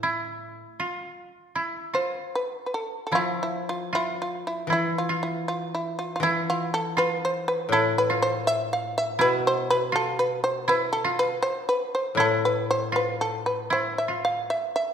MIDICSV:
0, 0, Header, 1, 4, 480
1, 0, Start_track
1, 0, Tempo, 758534
1, 27, Time_signature, 4, 2, 24, 8
1, 987, Tempo, 789474
1, 2427, Tempo, 765306
1, 3387, Tempo, 745342
1, 7707, Tempo, 772201
1, 9428, End_track
2, 0, Start_track
2, 0, Title_t, "Shamisen"
2, 0, Program_c, 0, 106
2, 0, Note_on_c, 0, 64, 59
2, 1222, Note_on_c, 0, 72, 63
2, 1443, Note_off_c, 0, 64, 0
2, 1446, Note_off_c, 0, 72, 0
2, 1470, Note_on_c, 0, 71, 71
2, 1652, Note_off_c, 0, 71, 0
2, 1658, Note_on_c, 0, 71, 43
2, 1703, Note_off_c, 0, 71, 0
2, 1706, Note_on_c, 0, 69, 55
2, 1894, Note_off_c, 0, 69, 0
2, 1903, Note_on_c, 0, 69, 42
2, 1946, Note_off_c, 0, 69, 0
2, 1955, Note_on_c, 0, 65, 76
2, 2101, Note_off_c, 0, 65, 0
2, 2123, Note_on_c, 0, 64, 66
2, 2265, Note_off_c, 0, 64, 0
2, 2283, Note_on_c, 0, 65, 72
2, 2424, Note_off_c, 0, 65, 0
2, 2441, Note_on_c, 0, 64, 82
2, 2586, Note_off_c, 0, 64, 0
2, 2608, Note_on_c, 0, 65, 65
2, 2749, Note_off_c, 0, 65, 0
2, 2767, Note_on_c, 0, 64, 63
2, 2907, Note_off_c, 0, 64, 0
2, 2927, Note_on_c, 0, 64, 69
2, 3066, Note_off_c, 0, 64, 0
2, 3089, Note_on_c, 0, 65, 67
2, 3227, Note_off_c, 0, 65, 0
2, 3242, Note_on_c, 0, 64, 72
2, 3384, Note_off_c, 0, 64, 0
2, 3402, Note_on_c, 0, 65, 74
2, 3548, Note_off_c, 0, 65, 0
2, 3572, Note_on_c, 0, 64, 64
2, 3714, Note_off_c, 0, 64, 0
2, 3727, Note_on_c, 0, 65, 68
2, 3829, Note_off_c, 0, 65, 0
2, 3837, Note_on_c, 0, 65, 61
2, 3876, Note_off_c, 0, 65, 0
2, 3883, Note_on_c, 0, 64, 81
2, 4029, Note_off_c, 0, 64, 0
2, 4055, Note_on_c, 0, 65, 82
2, 4196, Note_off_c, 0, 65, 0
2, 4211, Note_on_c, 0, 69, 85
2, 4354, Note_off_c, 0, 69, 0
2, 4367, Note_on_c, 0, 71, 81
2, 4512, Note_off_c, 0, 71, 0
2, 4539, Note_on_c, 0, 72, 76
2, 4679, Note_off_c, 0, 72, 0
2, 4689, Note_on_c, 0, 71, 79
2, 4834, Note_off_c, 0, 71, 0
2, 4849, Note_on_c, 0, 69, 93
2, 4994, Note_off_c, 0, 69, 0
2, 5012, Note_on_c, 0, 71, 85
2, 5156, Note_off_c, 0, 71, 0
2, 5168, Note_on_c, 0, 72, 94
2, 5314, Note_off_c, 0, 72, 0
2, 5327, Note_on_c, 0, 76, 95
2, 5473, Note_off_c, 0, 76, 0
2, 5493, Note_on_c, 0, 77, 81
2, 5635, Note_off_c, 0, 77, 0
2, 5653, Note_on_c, 0, 76, 92
2, 5793, Note_off_c, 0, 76, 0
2, 5804, Note_on_c, 0, 71, 93
2, 5946, Note_off_c, 0, 71, 0
2, 5971, Note_on_c, 0, 72, 93
2, 6108, Note_off_c, 0, 72, 0
2, 6121, Note_on_c, 0, 71, 104
2, 6262, Note_off_c, 0, 71, 0
2, 6283, Note_on_c, 0, 69, 90
2, 6422, Note_off_c, 0, 69, 0
2, 6435, Note_on_c, 0, 71, 85
2, 6578, Note_off_c, 0, 71, 0
2, 6593, Note_on_c, 0, 72, 86
2, 6739, Note_off_c, 0, 72, 0
2, 6757, Note_on_c, 0, 71, 87
2, 6902, Note_off_c, 0, 71, 0
2, 6908, Note_on_c, 0, 69, 85
2, 7056, Note_off_c, 0, 69, 0
2, 7079, Note_on_c, 0, 71, 89
2, 7221, Note_off_c, 0, 71, 0
2, 7229, Note_on_c, 0, 72, 95
2, 7375, Note_off_c, 0, 72, 0
2, 7398, Note_on_c, 0, 71, 78
2, 7541, Note_off_c, 0, 71, 0
2, 7565, Note_on_c, 0, 72, 74
2, 7707, Note_off_c, 0, 72, 0
2, 7727, Note_on_c, 0, 69, 87
2, 7865, Note_off_c, 0, 69, 0
2, 7884, Note_on_c, 0, 71, 80
2, 8021, Note_off_c, 0, 71, 0
2, 8042, Note_on_c, 0, 72, 91
2, 8178, Note_off_c, 0, 72, 0
2, 8199, Note_on_c, 0, 71, 77
2, 8335, Note_off_c, 0, 71, 0
2, 8356, Note_on_c, 0, 69, 74
2, 8494, Note_off_c, 0, 69, 0
2, 8512, Note_on_c, 0, 71, 74
2, 8654, Note_off_c, 0, 71, 0
2, 8676, Note_on_c, 0, 72, 76
2, 8818, Note_off_c, 0, 72, 0
2, 8836, Note_on_c, 0, 76, 72
2, 8979, Note_off_c, 0, 76, 0
2, 9000, Note_on_c, 0, 77, 74
2, 9142, Note_off_c, 0, 77, 0
2, 9158, Note_on_c, 0, 76, 80
2, 9302, Note_off_c, 0, 76, 0
2, 9317, Note_on_c, 0, 76, 71
2, 9428, Note_off_c, 0, 76, 0
2, 9428, End_track
3, 0, Start_track
3, 0, Title_t, "Koto"
3, 0, Program_c, 1, 107
3, 20, Note_on_c, 1, 64, 77
3, 504, Note_on_c, 1, 65, 64
3, 542, Note_off_c, 1, 64, 0
3, 984, Note_on_c, 1, 64, 66
3, 1020, Note_off_c, 1, 65, 0
3, 1216, Note_on_c, 1, 65, 51
3, 1252, Note_off_c, 1, 64, 0
3, 1938, Note_on_c, 1, 64, 82
3, 1974, Note_off_c, 1, 65, 0
3, 2426, Note_on_c, 1, 65, 65
3, 2464, Note_off_c, 1, 64, 0
3, 2911, Note_on_c, 1, 64, 75
3, 2948, Note_off_c, 1, 65, 0
3, 3156, Note_on_c, 1, 65, 60
3, 3194, Note_off_c, 1, 64, 0
3, 3884, Note_on_c, 1, 64, 89
3, 3923, Note_off_c, 1, 65, 0
3, 4359, Note_on_c, 1, 65, 75
3, 4397, Note_off_c, 1, 64, 0
3, 4845, Note_on_c, 1, 64, 84
3, 4883, Note_off_c, 1, 65, 0
3, 5086, Note_on_c, 1, 65, 69
3, 5125, Note_off_c, 1, 64, 0
3, 5788, Note_on_c, 1, 64, 87
3, 5827, Note_off_c, 1, 65, 0
3, 6261, Note_on_c, 1, 65, 79
3, 6300, Note_off_c, 1, 64, 0
3, 6748, Note_on_c, 1, 64, 86
3, 6787, Note_off_c, 1, 65, 0
3, 6984, Note_on_c, 1, 65, 78
3, 7023, Note_off_c, 1, 64, 0
3, 7710, Note_on_c, 1, 64, 95
3, 7748, Note_off_c, 1, 65, 0
3, 8176, Note_on_c, 1, 65, 70
3, 8214, Note_off_c, 1, 64, 0
3, 8661, Note_on_c, 1, 64, 73
3, 8699, Note_off_c, 1, 65, 0
3, 8897, Note_on_c, 1, 65, 54
3, 8935, Note_off_c, 1, 64, 0
3, 9428, Note_off_c, 1, 65, 0
3, 9428, End_track
4, 0, Start_track
4, 0, Title_t, "Koto"
4, 0, Program_c, 2, 107
4, 0, Note_on_c, 2, 45, 55
4, 381, Note_off_c, 2, 45, 0
4, 1933, Note_on_c, 2, 53, 51
4, 2893, Note_on_c, 2, 52, 54
4, 3379, Note_off_c, 2, 53, 0
4, 3856, Note_off_c, 2, 52, 0
4, 3864, Note_on_c, 2, 52, 55
4, 4822, Note_on_c, 2, 45, 58
4, 5315, Note_off_c, 2, 52, 0
4, 5787, Note_off_c, 2, 45, 0
4, 5788, Note_on_c, 2, 47, 58
4, 7221, Note_off_c, 2, 47, 0
4, 7695, Note_on_c, 2, 45, 52
4, 9137, Note_off_c, 2, 45, 0
4, 9428, End_track
0, 0, End_of_file